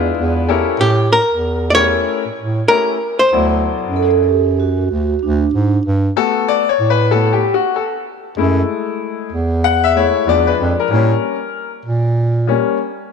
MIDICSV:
0, 0, Header, 1, 5, 480
1, 0, Start_track
1, 0, Tempo, 631579
1, 607, Time_signature, 4, 2, 24, 8
1, 9974, End_track
2, 0, Start_track
2, 0, Title_t, "Hollow-body jazz guitar"
2, 0, Program_c, 0, 26
2, 0, Note_on_c, 0, 68, 77
2, 345, Note_off_c, 0, 68, 0
2, 613, Note_on_c, 0, 67, 84
2, 852, Note_off_c, 0, 67, 0
2, 855, Note_on_c, 0, 70, 97
2, 1291, Note_off_c, 0, 70, 0
2, 1295, Note_on_c, 0, 74, 75
2, 1324, Note_off_c, 0, 74, 0
2, 1327, Note_on_c, 0, 73, 111
2, 2017, Note_off_c, 0, 73, 0
2, 2039, Note_on_c, 0, 70, 99
2, 2424, Note_off_c, 0, 70, 0
2, 2427, Note_on_c, 0, 72, 82
2, 3117, Note_off_c, 0, 72, 0
2, 9974, End_track
3, 0, Start_track
3, 0, Title_t, "Vibraphone"
3, 0, Program_c, 1, 11
3, 3012, Note_on_c, 1, 69, 107
3, 3200, Note_off_c, 1, 69, 0
3, 3209, Note_on_c, 1, 69, 71
3, 3250, Note_off_c, 1, 69, 0
3, 3258, Note_on_c, 1, 67, 84
3, 3494, Note_on_c, 1, 66, 90
3, 3500, Note_off_c, 1, 67, 0
3, 3973, Note_on_c, 1, 62, 72
3, 3985, Note_off_c, 1, 66, 0
3, 4420, Note_off_c, 1, 62, 0
3, 9974, End_track
4, 0, Start_track
4, 0, Title_t, "Upright piano"
4, 0, Program_c, 2, 0
4, 0, Note_on_c, 2, 56, 66
4, 0, Note_on_c, 2, 62, 63
4, 0, Note_on_c, 2, 64, 60
4, 0, Note_on_c, 2, 65, 62
4, 0, Note_on_c, 2, 71, 66
4, 362, Note_off_c, 2, 64, 0
4, 369, Note_on_c, 2, 69, 79
4, 372, Note_on_c, 2, 61, 63
4, 374, Note_on_c, 2, 64, 68
4, 374, Note_on_c, 2, 67, 67
4, 377, Note_on_c, 2, 70, 76
4, 565, Note_off_c, 2, 56, 0
4, 567, Note_off_c, 2, 62, 0
4, 569, Note_off_c, 2, 65, 0
4, 570, Note_off_c, 2, 71, 0
4, 664, Note_off_c, 2, 69, 0
4, 666, Note_off_c, 2, 61, 0
4, 667, Note_off_c, 2, 64, 0
4, 667, Note_off_c, 2, 67, 0
4, 668, Note_off_c, 2, 70, 0
4, 1329, Note_on_c, 2, 57, 70
4, 1332, Note_on_c, 2, 61, 68
4, 1334, Note_on_c, 2, 64, 68
4, 1336, Note_on_c, 2, 67, 66
4, 1337, Note_on_c, 2, 70, 80
4, 1681, Note_off_c, 2, 57, 0
4, 1682, Note_off_c, 2, 61, 0
4, 1683, Note_off_c, 2, 64, 0
4, 1684, Note_off_c, 2, 67, 0
4, 1685, Note_off_c, 2, 70, 0
4, 2048, Note_on_c, 2, 57, 67
4, 2048, Note_on_c, 2, 61, 61
4, 2050, Note_on_c, 2, 64, 67
4, 2053, Note_on_c, 2, 67, 61
4, 2055, Note_on_c, 2, 70, 74
4, 2228, Note_off_c, 2, 57, 0
4, 2228, Note_off_c, 2, 61, 0
4, 2229, Note_off_c, 2, 64, 0
4, 2231, Note_off_c, 2, 67, 0
4, 2232, Note_off_c, 2, 70, 0
4, 2526, Note_on_c, 2, 54, 60
4, 2529, Note_on_c, 2, 47, 58
4, 2532, Note_on_c, 2, 64, 50
4, 2534, Note_on_c, 2, 69, 55
4, 2537, Note_on_c, 2, 74, 64
4, 3207, Note_off_c, 2, 54, 0
4, 3208, Note_off_c, 2, 47, 0
4, 3210, Note_off_c, 2, 64, 0
4, 3211, Note_off_c, 2, 69, 0
4, 3212, Note_off_c, 2, 74, 0
4, 4683, Note_on_c, 2, 57, 59
4, 4687, Note_on_c, 2, 59, 50
4, 4688, Note_on_c, 2, 69, 96
4, 4692, Note_on_c, 2, 66, 62
4, 4928, Note_on_c, 2, 74, 100
4, 4935, Note_off_c, 2, 69, 0
4, 5020, Note_off_c, 2, 57, 0
4, 5022, Note_off_c, 2, 59, 0
4, 5025, Note_off_c, 2, 66, 0
4, 5085, Note_on_c, 2, 73, 89
4, 5093, Note_off_c, 2, 74, 0
4, 5235, Note_off_c, 2, 73, 0
4, 5245, Note_on_c, 2, 71, 94
4, 5402, Note_on_c, 2, 57, 55
4, 5404, Note_on_c, 2, 59, 46
4, 5405, Note_on_c, 2, 69, 92
4, 5406, Note_on_c, 2, 66, 53
4, 5411, Note_off_c, 2, 71, 0
4, 5567, Note_on_c, 2, 67, 78
4, 5571, Note_off_c, 2, 69, 0
4, 5620, Note_off_c, 2, 57, 0
4, 5621, Note_off_c, 2, 59, 0
4, 5622, Note_off_c, 2, 66, 0
4, 5731, Note_on_c, 2, 66, 79
4, 5732, Note_off_c, 2, 67, 0
4, 5878, Note_off_c, 2, 66, 0
4, 5897, Note_on_c, 2, 69, 78
4, 5950, Note_off_c, 2, 69, 0
4, 6360, Note_on_c, 2, 56, 54
4, 6368, Note_on_c, 2, 57, 52
4, 6371, Note_on_c, 2, 64, 62
4, 7053, Note_off_c, 2, 56, 0
4, 7057, Note_off_c, 2, 57, 0
4, 7059, Note_off_c, 2, 64, 0
4, 7328, Note_on_c, 2, 78, 109
4, 7473, Note_off_c, 2, 78, 0
4, 7476, Note_on_c, 2, 76, 99
4, 7563, Note_on_c, 2, 56, 52
4, 7567, Note_on_c, 2, 57, 44
4, 7570, Note_on_c, 2, 64, 57
4, 7574, Note_off_c, 2, 76, 0
4, 7576, Note_on_c, 2, 73, 95
4, 7781, Note_off_c, 2, 56, 0
4, 7783, Note_off_c, 2, 57, 0
4, 7785, Note_off_c, 2, 64, 0
4, 7805, Note_on_c, 2, 53, 60
4, 7810, Note_on_c, 2, 56, 50
4, 7812, Note_on_c, 2, 62, 64
4, 7819, Note_off_c, 2, 73, 0
4, 7820, Note_on_c, 2, 74, 95
4, 7958, Note_off_c, 2, 74, 0
4, 7958, Note_on_c, 2, 71, 86
4, 8011, Note_off_c, 2, 71, 0
4, 8205, Note_on_c, 2, 70, 74
4, 8262, Note_off_c, 2, 53, 0
4, 8264, Note_off_c, 2, 56, 0
4, 8266, Note_off_c, 2, 62, 0
4, 8282, Note_on_c, 2, 55, 53
4, 8288, Note_on_c, 2, 58, 50
4, 8292, Note_on_c, 2, 61, 60
4, 8619, Note_off_c, 2, 55, 0
4, 8622, Note_off_c, 2, 58, 0
4, 8625, Note_off_c, 2, 61, 0
4, 8886, Note_off_c, 2, 70, 0
4, 9479, Note_on_c, 2, 55, 56
4, 9484, Note_on_c, 2, 58, 46
4, 9489, Note_on_c, 2, 61, 63
4, 9699, Note_off_c, 2, 55, 0
4, 9701, Note_off_c, 2, 58, 0
4, 9704, Note_off_c, 2, 61, 0
4, 9974, End_track
5, 0, Start_track
5, 0, Title_t, "Bass clarinet"
5, 0, Program_c, 3, 71
5, 0, Note_on_c, 3, 40, 73
5, 80, Note_off_c, 3, 40, 0
5, 131, Note_on_c, 3, 40, 89
5, 514, Note_off_c, 3, 40, 0
5, 608, Note_on_c, 3, 45, 107
5, 913, Note_off_c, 3, 45, 0
5, 991, Note_on_c, 3, 40, 78
5, 1540, Note_off_c, 3, 40, 0
5, 1710, Note_on_c, 3, 45, 44
5, 1750, Note_off_c, 3, 45, 0
5, 1810, Note_on_c, 3, 45, 79
5, 2001, Note_off_c, 3, 45, 0
5, 2527, Note_on_c, 3, 38, 93
5, 2832, Note_off_c, 3, 38, 0
5, 2911, Note_on_c, 3, 42, 77
5, 3698, Note_off_c, 3, 42, 0
5, 3729, Note_on_c, 3, 38, 77
5, 3921, Note_off_c, 3, 38, 0
5, 3965, Note_on_c, 3, 38, 92
5, 4158, Note_off_c, 3, 38, 0
5, 4206, Note_on_c, 3, 44, 89
5, 4399, Note_off_c, 3, 44, 0
5, 4449, Note_on_c, 3, 43, 102
5, 4641, Note_off_c, 3, 43, 0
5, 5166, Note_on_c, 3, 45, 96
5, 5757, Note_off_c, 3, 45, 0
5, 6364, Note_on_c, 3, 42, 99
5, 6558, Note_off_c, 3, 42, 0
5, 7083, Note_on_c, 3, 40, 89
5, 7676, Note_off_c, 3, 40, 0
5, 7803, Note_on_c, 3, 40, 93
5, 7997, Note_off_c, 3, 40, 0
5, 8051, Note_on_c, 3, 41, 83
5, 8162, Note_off_c, 3, 41, 0
5, 8287, Note_on_c, 3, 45, 111
5, 8479, Note_off_c, 3, 45, 0
5, 9005, Note_on_c, 3, 46, 88
5, 9597, Note_off_c, 3, 46, 0
5, 9974, End_track
0, 0, End_of_file